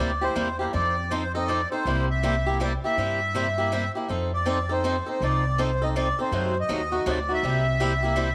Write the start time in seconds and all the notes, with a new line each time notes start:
Already playing: D5
0.00 D2 A#3 E4 G4
0.21 A#3 E4 G4 C5
0.35 E2 C3 G3 A#3 E4 G4
0.59 A#3 E4 G4 C5
0.73 F2 F3 C4 D#4 A4 D5
1.11 F3 C4 D#4 A4 C5
1.34 C4 D#4 A4 D#5
1.47 F3 C4 D#4 A4 D5
1.71 C4 D#4 A4 C5
1.85 C2 C3 G3 A#3 E4 G4
2.10 E5
2.23 C3 G3 A#3 E4 G4
2.46 A#3 E4 G4
2.60 C3 G3 A#3 E4 G4 D5
2.84 A#3 E4 G4 E5
2.97 G2 C3 G3 A#3 E4 G4
3.35 C3 G3 A#3 E4 G4
3.58 A#3 E4 G4
3.72 C3 G3 A#3 E4 G4
3.95 A#3 E4 G4
4.08 F2 F3 C4 D#4 A4
4.33 D5
4.46 F3 C4 D#4 A4
4.69 C4 D#4 A4 C5
4.84 F3 C4 D#4 A4
5.06 C4 D#4 A4 C5
5.20 C2 F3 C4 D#4 A4 D5
5.58 F3 C4 D#4 A4 C5
5.82 C4 D#4 A4 D#5
5.96 F3 C4 D#4 A4 D5
6.19 C4 D#4 A4 C5
6.31 F#2 C3 F#3 A3 D#4 F#4
6.60 D#5
6.69 D#2 C3 F#3 A3 D#4 F#4
6.92 A3 D#4 F#4
7.06 D2 C3 F#3 A3 D#4 F#4
7.10 D5
7.29 A3 D#4 F#4
7.34 E5
7.43 C2 C3 G3 A#3 E4 G4
7.80 C3 G3 A#3 E4 G4
8.03 A#3 E4 G4
8.16 C3 G3 A#3 E4 G4